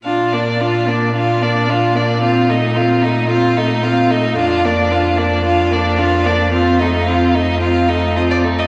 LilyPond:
<<
  \new Staff \with { instrumentName = "Violin" } { \time 4/4 \key bes \major \tempo 4 = 111 f''8 d''8 f''8 d''8 f''8 d''8 f''8 d''8 | f''8 ees''8 f''8 ees''8 f''8 ees''8 f''8 ees''8 | f''8 d''8 f''8 d''8 f''8 d''8 f''8 d''8 | f''8 ees''8 f''8 ees''8 f''8 ees''8 ees''16 d''8 ees''16 | }
  \new Staff \with { instrumentName = "Violin" } { \time 4/4 \key bes \major f'8 d'8 f'8 d'8 f'8 d'8 f'8 d'8 | f'8 ees'8 f'8 ees'8 f'8 ees'8 f'8 ees'8 | f'8 d'8 f'8 d'8 f'8 d'8 f'8 d'8 | f'8 ees'8 f'8 ees'8 f'8 ees'8 f'8 ees'8 | }
  \new Staff \with { instrumentName = "Viola" } { \time 4/4 \key bes \major d'8 bes8 d'8 bes8 d'8 bes8 d'8 bes8 | c'8 a8 c'8 a8 c'8 a8 c'8 a8 | d'8 bes8 d'8 bes8 d'8 bes8 d'8 bes8 | c'8 a8 c'8 a8 c'8 a8 c'8 a8 | }
  \new Staff \with { instrumentName = "Cello" } { \clef bass \time 4/4 \key bes \major bes,1~ | bes,1 | f,1~ | f,2.~ f,8 r8 | }
>>